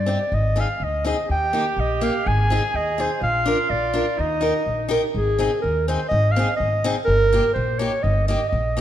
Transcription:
0.00 0.14 G2 medium
0.00 0.35 D5 medium
0.06 0.17 C4 medium
0.06 0.18 D#4 medium
0.06 0.18 G4 soft
0.32 0.63 G#1 medium
0.32 0.62 D#5 loud
0.56 0.66 C4 medium
0.56 0.67 D#4 medium
0.56 0.67 G#4 medium
0.61 0.85 F5 medium
0.80 1.12 D2 medium
0.84 1.06 D#5 medium
1.04 1.15 C4 medium
1.04 1.16 D#4 medium
1.04 1.16 G#4 medium
1.04 1.28 D#5 medium
1.28 1.61 D#2 medium
1.28 2.26 G4 medium
1.28 1.82 G5 loud
1.53 1.64 A#3 medium
1.53 1.64 D#4 soft
1.53 1.65 G4 medium
1.77 2.08 A#1 medium
1.77 2.05 D#5 medium
2.01 2.12 A#3 medium
2.01 2.13 D#4 medium
2.01 2.13 G4 medium
2.01 2.29 F5 medium
2.25 2.57 G#1 medium
2.25 3.20 G#4 loud
2.25 2.77 G#5 loud
2.50 2.61 C4 medium
2.50 2.61 D#4 medium
2.50 2.62 G#4 medium
2.74 3.05 D#2 medium
2.74 3.02 D#5 medium
2.98 3.09 C4 medium
2.98 3.09 D#4 soft
2.98 3.10 G#4 medium
2.98 3.23 C5 medium
3.21 3.53 A#1 medium
3.21 4.20 F4 loud
3.21 3.72 F5 loud
3.46 3.56 D4 medium
3.46 3.57 F4 soft
3.46 3.57 A#4 medium
3.70 4.01 A#1 medium
3.70 4.22 D5 medium
3.94 4.04 D4 medium
3.94 4.05 F4 medium
3.94 4.05 A#4 medium
4.18 4.50 D#2 medium
4.18 4.65 D#4 medium
4.18 4.93 D#5 loud
4.41 4.52 D#4 medium
4.41 4.53 G4 soft
4.41 4.53 A#4 medium
4.65 4.98 A#1 medium
4.65 5.11 D#4 medium
4.89 5.00 D#4 medium
4.89 5.01 G4 medium
4.89 5.02 A#4 medium
5.15 5.46 G#1 medium
5.15 5.61 G#4 loud
5.39 5.50 C4 medium
5.39 5.50 D#4 medium
5.39 5.51 G#4 medium
5.62 5.95 D#2 medium
5.62 5.86 A#4 medium
5.88 5.99 C4 medium
5.88 5.99 D#4 medium
5.88 6.00 G#4 medium
5.88 6.08 C5 medium
6.08 6.43 G#1 medium
6.08 6.33 D#5 loud
6.32 6.56 F5 medium
6.36 6.47 C4 medium
6.36 6.48 D#4 medium
6.36 6.48 G#4 medium
6.57 6.91 G#1 medium
6.57 6.92 D#5 loud
6.84 6.95 C4 medium
6.84 6.95 D#4 medium
6.84 6.96 G#4 medium
7.05 7.39 G1 medium
7.05 7.50 A#4 loud
7.32 7.43 A#3 medium
7.32 7.43 D#4 medium
7.32 7.44 G4 medium
7.54 7.87 A#1 medium
7.54 7.80 C5 medium
7.79 7.90 A#3 medium
7.79 7.91 D#4 medium
7.79 7.91 G4 medium
7.79 8.04 C#5 loud
8.03 8.35 G1 medium
8.03 8.27 D#5 loud
8.28 8.39 A#3 medium
8.28 8.39 D#4 medium
8.28 8.40 G4 medium
8.28 8.48 D#5 medium
8.49 8.81 A#1 medium
8.49 8.81 D#5 medium
8.77 8.81 A#3 medium
8.77 8.81 D#4 medium

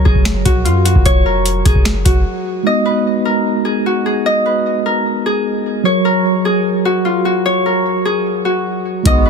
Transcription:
0.00 2.61 F#3 medium
0.00 2.61 F#4 medium
0.00 1.25 A#4 medium
0.00 2.62 A#4 medium
0.00 1.05 C#5 medium
0.00 2.63 C#5 medium
0.05 0.44 F#1 loud
0.05 1.65 G#4 medium
0.05 kick loud
0.15 kick medium
0.25 finger snap medium
0.25 snare loud
0.25 closed hi-hat medium
0.45 0.67 A#1 loud
0.45 0.71 F#4 medium
0.45 kick loud
0.45 closed hi-hat medium
0.65 0.94 F#2 loud
0.65 0.91 F4 medium
0.65 closed hi-hat medium
0.85 2.05 F#4 medium
0.85 closed hi-hat medium
0.95 1.63 F1 loud
0.95 kick medium
1.06 2.97 C#5 loud
1.06 kick loud
1.06 closed hi-hat medium
1.26 2.92 A#4 medium
1.46 closed hi-hat medium
1.65 2.04 F#1 loud
1.65 3.64 G#4 medium
1.65 kick loud
1.65 closed hi-hat medium
1.75 kick loud
1.85 finger snap medium
1.85 snare loud
1.85 closed hi-hat medium
2.05 2.26 F#1 loud
2.05 3.86 F#4 medium
2.05 kick loud
2.05 closed hi-hat medium
2.63 5.80 G#3 medium
2.63 5.81 D#4 medium
2.63 5.82 F#4 medium
2.63 4.26 D#5 loud
2.68 5.83 B3 medium
2.86 3.31 B4 medium
3.25 4.52 A#4 medium
3.65 4.05 G#4 medium
3.86 6.30 F#4 medium
4.06 5.25 G#4 medium
4.26 6.04 D#5 loud
4.46 4.92 B4 medium
4.86 6.05 A#4 medium
5.26 6.45 G#4 medium
5.84 9.01 F#3 medium
5.84 9.01 F#4 medium
5.84 9.02 A#4 medium
5.84 7.45 C#5 medium
5.88 9.03 C#5 medium
6.05 7.65 A#4 medium
6.45 8.05 G#4 medium
6.85 7.11 F#4 medium
7.05 7.31 F4 medium
7.25 8.45 F#4 medium
7.46 9.30 C#5 loud
7.66 9.30 A#4 medium
8.05 9.30 G#4 medium
8.45 9.30 F#4 medium
9.03 9.30 G#1 loud
9.03 9.30 G#3 medium
9.03 9.30 B3 medium
9.03 9.30 D#4 medium
9.03 9.30 F#4 medium
9.03 9.30 D#5 loud
9.03 kick loud
9.03 closed hi-hat medium
9.08 9.30 B3 medium
9.26 9.30 B4 medium

